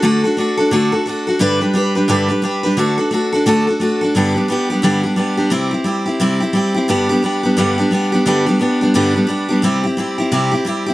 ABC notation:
X:1
M:4/4
L:1/8
Q:"Swing" 1/4=175
K:G
V:1 name="Steel-string acoustic guitar"
[D,A,DFA] [DFA] [A,DFA] [DFA] [D,A,DFA] [DFA] [A,DFA] [DFA] | [G,,D,G,DGB] [G,DGB] [G,DGB] [G,DGB] [G,,D,G,DGB] [G,DGB] [G,DGB] [G,DGB] | [D,A,DFA] [DFA] [A,DFA] [DFA] [D,A,DFA] [DFA] [A,DFA] [DFA] | [G,,D,G,B,DG] [G,B,DG] [G,B,DG] [G,B,DG] [G,,D,G,B,DG] [G,B,DG] [G,B,DG] [G,B,DG] |
[C,G,CEG] [CEG] [G,CEG] [CEG] [C,G,CEG] [CEG] [G,CEG] [CEG] | [G,,D,G,B,DG] [G,B,DG] [G,B,DG] [G,B,DG] [G,,D,G,B,DG] [G,B,DG] [G,B,DG] [G,B,DG] | [G,,D,G,B,DG] [G,B,DG] [G,B,DG] [G,B,DG] [G,,D,G,B,DG] [G,B,DG] [G,B,DG] [G,B,DG] | [C,G,CEG] [CEG] [G,CEG] [CEG] [C,G,CEG] [CEG] [G,CEG] [CEG] |]